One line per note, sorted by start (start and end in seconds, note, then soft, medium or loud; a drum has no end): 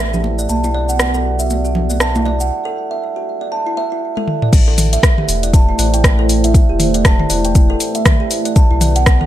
0.00 0.47 A1 medium
0.00 0.46 A3 medium
0.00 0.46 E4 medium
0.00 2.47 B4 medium
0.00 0.46 C5 medium
0.13 0.24 G4 medium
0.13 low conga medium
0.13 shaker soft
0.24 muted conga soft
0.39 0.49 D5 medium
0.39 shaker medium
0.49 2.51 B1 medium
0.49 2.49 B3 medium
0.49 2.49 F#4 medium
0.49 2.49 D5 medium
0.49 0.62 A5 medium
0.49 high conga medium
0.49 shaker medium
0.64 0.70 E4 medium
0.64 muted conga soft
0.64 shaker soft
0.74 0.88 D5 loud
0.89 0.99 F#5 medium
0.89 shaker medium
0.99 cross-stick loud
0.99 muted conga soft
0.99 shaker medium
1.14 1.24 A4 medium
1.14 shaker soft
1.39 1.49 E5 medium
1.39 shaker medium
1.50 muted conga soft
1.50 shaker medium
1.65 1.75 F#4 medium
1.65 shaker soft
1.75 low conga loud
1.90 2.00 D5 medium
1.90 muted conga soft
1.90 shaker medium
2.00 2.14 A5 medium
2.00 cross-stick loud
2.00 shaker medium
2.15 2.21 E4 medium
2.15 high conga loud
2.15 shaker soft
2.25 2.40 D5 loud
2.25 muted conga soft
2.25 high conga medium
2.40 2.50 F#5 medium
2.40 shaker medium
2.65 2.75 A4 loud
2.91 3.00 E5 medium
3.16 3.26 F#4 medium
3.41 3.51 D5 medium
3.52 3.65 A5 medium
3.67 3.72 E4 medium
3.77 3.85 E5 loud
3.92 4.01 E4 medium
4.17 4.23 A4 medium
4.17 high tom soft
4.28 mid tom medium
4.42 4.48 D5 medium
4.42 mid tom medium
4.53 4.98 A1 loud
4.53 8.52 A3 medium
4.53 8.52 E4 medium
4.53 9.26 B4 medium
4.53 8.52 C5 medium
4.53 kick loud
4.53 closed hi-hat soft
4.53 crash loud
4.53 shaker medium
4.68 4.77 A4 loud
4.78 open hi-hat medium
4.78 mid tom medium
4.78 shaker medium
4.93 5.02 E5 medium
4.93 closed hi-hat medium
4.93 shaker soft
5.03 kick loud
5.03 cross-stick loud
5.03 closed hi-hat soft
5.03 shaker medium
5.18 5.28 G4 medium
5.18 mid tom medium
5.28 5.73 E1 loud
5.28 open hi-hat medium
5.28 shaker medium
5.43 5.53 D5 medium
5.43 closed hi-hat medium
5.43 shaker soft
5.54 5.67 A5 medium
5.54 kick loud
5.54 closed hi-hat soft
5.54 shaker medium
5.69 5.74 E4 medium
5.79 6.61 A1 loud
5.79 5.93 D5 loud
5.79 open hi-hat medium
5.79 shaker medium
5.94 6.03 G5 medium
5.94 closed hi-hat medium
5.94 shaker soft
6.04 kick loud
6.04 cross-stick loud
6.04 closed hi-hat soft
6.04 shaker medium
6.19 6.28 A4 loud
6.29 open hi-hat medium
6.29 shaker medium
6.44 6.54 E5 medium
6.44 closed hi-hat medium
6.44 shaker soft
6.54 kick loud
6.54 closed hi-hat soft
6.54 shaker medium
6.69 7.24 E1 loud
6.69 6.79 G4 medium
6.80 open hi-hat medium
6.80 mid tom medium
6.80 shaker medium
6.94 7.04 D5 medium
6.94 closed hi-hat medium
6.94 shaker soft
7.05 7.18 A5 medium
7.05 kick loud
7.05 cross-stick loud
7.05 closed hi-hat soft
7.05 shaker medium
7.19 7.25 E4 medium
7.19 mid tom medium
7.30 7.75 E1 loud
7.30 7.44 D5 loud
7.30 open hi-hat medium
7.30 shaker loud
7.45 7.54 G5 medium
7.45 closed hi-hat medium
7.45 shaker soft
7.55 kick loud
7.55 closed hi-hat soft
7.55 shaker medium
7.70 7.79 A4 loud
7.80 open hi-hat medium
7.80 shaker loud
7.95 8.05 E5 medium
7.95 closed hi-hat medium
7.95 shaker soft
8.06 kick loud
8.06 cross-stick loud
8.06 closed hi-hat soft
8.06 mid tom medium
8.06 shaker medium
8.20 8.30 G4 medium
8.31 open hi-hat medium
8.31 shaker medium
8.45 8.55 D5 medium
8.45 closed hi-hat medium
8.45 shaker soft
8.56 9.26 B3 medium
8.56 9.26 F#4 medium
8.56 9.26 D5 medium
8.56 8.69 A5 medium
8.56 kick loud
8.56 closed hi-hat soft
8.56 shaker medium
8.71 9.26 B1 loud
8.71 8.76 E4 medium
8.81 8.95 D5 loud
8.81 open hi-hat medium
8.81 mid tom medium
8.81 shaker medium
8.96 9.05 F#5 medium
8.96 closed hi-hat soft
8.96 shaker soft
9.06 kick loud
9.06 cross-stick loud
9.06 closed hi-hat soft
9.06 shaker medium
9.21 9.26 A4 loud
9.21 mid tom medium